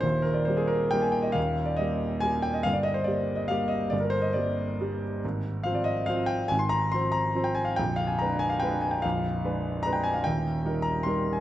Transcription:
<<
  \new Staff \with { instrumentName = "Grand piano" } { \time 3/4 \key ees \major \tempo 4 = 142 c''8 bes'16 d''16 c''16 aes'16 bes'8 g''16 aes''16 g''16 ees''16 | f''8. d''16 ees''4 aes''8 g''16 ees''16 | f''16 d''16 ees''16 c''16 d''8. ees''16 f''8 ees''8 | d''16 bes'16 c''16 ees''16 d''4. r8 |
r4 f''16 d''16 ees''8 f''8 g''8 | aes''16 c'''16 bes''8 c'''8 bes''8. g''16 aes''16 f''16 | g''8 f''16 aes''16 bes''8 aes''16 f''16 g''8 aes''16 g''16 | f''2 bes''16 g''16 aes''16 f''16 |
g''4. bes''8 c'''8. aes''16 | }
  \new Staff \with { instrumentName = "Grand piano" } { \time 3/4 \key ees \major <ees,, ees,>4 <g bes g'>4 <g bes g'>4 | <ees,, ees,>4 <g bes g'>4 <g bes g'>4 | <g,, g,>4 <g bes g'>4 <g bes g'>4 | <g,, g,>4 <g bes g'>4 <g bes g'>4 |
<aes,, aes,>4 <f c' c''>4 <f c' c''>4 | <aes,, aes,>4 <f c' c''>4 <f c' c''>4 | <bes,,, bes,,>4 <aes d' ces''>4 <aes d' ces''>4 | <bes,,, bes,,>4 <aes d' ces''>4 <aes d' ces''>4 |
<ees,, ees,>4 <g ees' bes'>4 <g ees' bes'>4 | }
>>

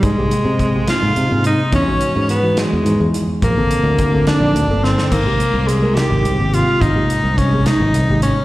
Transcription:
<<
  \new Staff \with { instrumentName = "Tenor saxophone" } { \time 6/8 \key aes \major \tempo 4. = 71 aes4. f'4 ees'8 | des'4 b8 gis4 r8 | bes4. d'4 c'8 | bes4 aes8 g'4 f'8 |
ees'4 des'8 ees'4 des'8 | }
  \new Staff \with { instrumentName = "Tenor saxophone" } { \time 6/8 \key aes \major aes4. f'4 ees'8 | des'4 b8 gis4 r8 | bes4. d'4 c'8 | bes4 aes8 g'4 f'8 |
ees'4 des'8 ees'4 des'8 | }
  \new Staff \with { instrumentName = "Reed electric piano" } { \time 6/8 \key aes \major r16 <c aes bes g'>8. r16 <c aes bes g'>8. r16 <c aes bes c'>8. | r16 <e gis dis' fis'>8. r16 <e gis dis' fis'>8. r16 <e gis dis' gis'>8. | r16 <d bes c' a'>8. r16 <d bes c' a'>8. r16 <d bes c' a'>8. | r16 <c aes bes g'>8. r16 <c aes bes bes'>8. r16 <c aes bes c'>8. |
r16 <c aes bes g'>8. r16 <c aes bes aes'>8. r16 <c aes bes g'>8. | }
  \new Staff \with { instrumentName = "Fretless electric bass" } { \clef bass \time 6/8 \key aes \major aes,16 r8 c4 aes,16 c16 aes,8 r16 | e,16 r8 gis,4 e,16 gis,16 e,8 r16 | bes,,16 r8 d,4 bes,,16 d,16 g,,8 r16 | aes,,16 r8 c,4 aes,,16 c,16 aes,,8 r16 |
aes,,16 r8 c,4 aes,,16 c,16 aes,,8 r16 | }
  \new DrumStaff \with { instrumentName = "Drums" } \drummode { \time 6/8 <hh bd>8 hh8 <hh bd>8 <hh sn>8 hh8 hh8 | <hh bd>8 hh8 hh8 <hh sn>8 hh8 hh8 | <hh bd>8 hh8 <hh bd>8 <hh sn>8 hh8 sn16 sn16 | <cymc hh bd>8 hh8 hh8 <hh sn>8 hh8 hh8 |
<hh bd>8 hh8 <hh bd>8 <hh sn>8 hh8 hh8 | }
>>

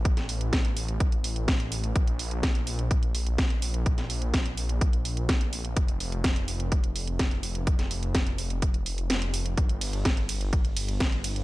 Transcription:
<<
  \new Staff \with { instrumentName = "Detuned saw bass" } { \clef bass \time 4/4 \key f \major \tempo 4 = 126 a,,1 | bes,,1~ | bes,,1 | f,,1~ |
f,,1 | g,,1 | }
  \new DrumStaff \with { instrumentName = "Drums" } \drummode { \time 4/4 <hh bd>16 <hh sn>16 hho16 hh16 <hh bd sn>16 hh16 hho16 hh16 <hh bd>16 hh16 hho16 hh16 <hh bd sn>16 hh16 hho16 hh16 | <hh bd>16 hh16 hho16 hh16 <hh bd sn>16 hh16 hho16 hh16 <hh bd>16 hh16 hho16 hh16 <hh bd sn>16 hh16 hho16 hh16 | <hh bd>16 <hh sn>16 hho16 hh16 <hh bd sn>16 hh16 hho16 hh16 <hh bd>16 hh16 hho16 hh16 <hh bd sn>16 hh16 hho16 hh16 | <hh bd>16 hh16 hho16 hh16 <hh bd sn>16 hh16 hho16 hh16 <hh bd>16 hh16 hho16 hh16 <hh bd sn>16 hh16 hho16 hh16 |
<hh bd>16 <hh sn>16 hho16 hh16 <hh bd sn>16 hh16 hho16 hh16 <hh bd>16 hh16 hho16 hh16 <hh sn>16 hh16 hho16 hh16 | <hh bd>16 hh16 <hho cymr>16 hh16 <hh bd sn>16 hh16 <hho cymr>16 hh16 <hh bd>16 hh16 <hho cymr>16 hh16 <hh bd sn>16 hh16 <hho cymr>16 hh16 | }
>>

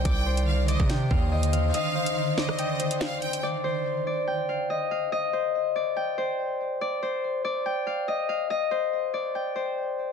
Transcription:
<<
  \new Staff \with { instrumentName = "Violin section" } { \time 4/4 \key c \minor \tempo 4 = 142 g''4 f''8 ees''8 r2 | f''4. ees''4. f''8 g''8 | r1 | r1 |
r1 | r1 | }
  \new Staff \with { instrumentName = "Harp" } { \time 4/4 \key c \minor d''8 c''4 d''8 g''8 f''8 ees''8 f''8 | ees''8 c''4 d''8 g''8 c''4. | d''8 c''4 d''8 g''8 f''8 ees''8 f''8 | ees''8 c''4 d''8 g''8 c''4. |
d''8 c''4 d''8 g''8 f''8 ees''8 f''8 | ees''8 c''4 d''8 g''8 c''4. | }
  \new Staff \with { instrumentName = "Ambient pad" } { \clef bass \time 4/4 \key c \minor <d ees c''>1~ | <d ees c''>1 | r1 | r1 |
r1 | r1 | }
  \new Staff \with { instrumentName = "808-style bass" } { \clef bass \time 4/4 \key c \minor c,4.~ c,16 c8. ees,4. | r1 | r1 | r1 |
r1 | r1 | }
  \new DrumStaff \with { instrumentName = "Drums" } \drummode { \time 4/4 <hh bd>8. hh16 r8 hh16 bd16 <hh sn>8 bd8 r16 hh16 hh8 | hh8. hh16 r8 sn16 ss16 hh8 hh16 hh16 sn8 hh16 hh16 | r4 r4 r4 r4 | r4 r4 r4 r4 |
r4 r4 r4 r4 | r4 r4 r4 r4 | }
>>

